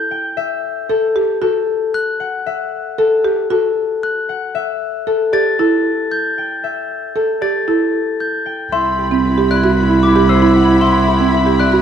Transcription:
Already playing: A4 E5
0.11 G5
0.37 E5
0.90 A4
1.16 G4
1.42 F#4 A4
1.94 F#6
2.20 F#5
2.46 E5
2.98 A4
3.25 G4
3.50 F#4 A4
4.03 F#6
4.29 F#5
4.55 E5
5.07 A4
5.33 G4 D5 A6
5.59 E4 A4
6.12 G6
6.38 G5
6.64 E5
7.16 A4
7.41 G4 D5 A6
7.68 E4 A4
8.20 G6
8.46 G5
8.72 C2 E4 E5 B5 C6
8.99 E4 G4
9.11 C4
9.25 E4 B4
9.38 G4
9.50 E4 D5 F#6
9.64 F#4
9.77 E4 B4
9.90 E4
10.03 D6
10.07 E4
10.16 G4
10.29 C5 E6
10.34 E4
10.42 E4
10.55 F#5
10.62 E4
10.81 E5 C6
10.89 E4
11.08 G4
11.16 E4
11.20 C4
11.34 B4
11.42 E4 G4
11.60 D5 F#6
11.70 E4 F#4

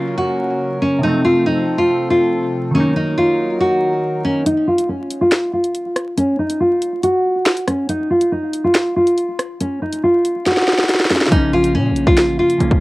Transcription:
Already playing: C#3 F#3 A#3 C#4 F4 A#4, downlifter
0.18 F#4
0.82 C#4
0.99 C3 F3
1.03 F3 A3 C4 D#4 A4
1.07 C4
1.25 F4
1.46 D#4
1.78 F4
2.10 F4
2.71 D#3 F#3 C#4 D#4 A#4
2.77 A#3 D#4
2.96 D#4
3.18 F4
3.60 F#4
4.25 C#4
4.46 D#4, closed hi-hat
4.67 F4
4.78 closed hi-hat
4.89 C#4
5.10 closed hi-hat
5.21 F4
5.32 finger snap, snare, closed hi-hat
5.53 F4
5.64 closed hi-hat
5.75 closed hi-hat
5.96 cross-stick, closed hi-hat
6.17 C#4, closed hi-hat
6.39 D#4
6.50 closed hi-hat
6.60 F4
6.82 closed hi-hat
7.03 F#4, closed hi-hat
7.46 finger snap, snare, closed hi-hat
7.57 closed hi-hat
7.68 C#4, cross-stick, closed hi-hat
7.89 D#4, closed hi-hat
8.10 F4
8.21 closed hi-hat
8.32 D#4
8.53 closed hi-hat
8.64 F4
8.75 finger snap, snare, closed hi-hat
8.96 F4
9.07 closed hi-hat
9.18 closed hi-hat
9.39 cross-stick, closed hi-hat
9.60 C#4, closed hi-hat
9.82 D#4
9.92 closed hi-hat
10.03 F4
10.25 closed hi-hat
10.46 F#4, snare, closed hi-hat
10.52 snare
10.57 snare
10.62 snare
10.68 snare
10.73 snare
10.78 snare
10.84 snare
10.89 snare, closed hi-hat
10.94 snare
11.00 snare
11.05 snare
11.10 C#4, snare, open hi-hat
11.16 snare
11.21 snare
11.27 C#3, snare
11.31 A#1 F3 A#3 D#4, kick, closed hi-hat
11.37 C#4
11.53 F4
11.64 closed hi-hat
11.75 A#2 C#4
11.91 A#1
11.96 closed hi-hat
12.07 A#1 F4, kick
12.17 finger snap, snare, closed hi-hat
12.28 A1
12.39 F4
12.50 closed hi-hat
12.58 A#1 C#3 F3 A#3, closed hi-hat
12.62 C#4
12.71 A#1, kick

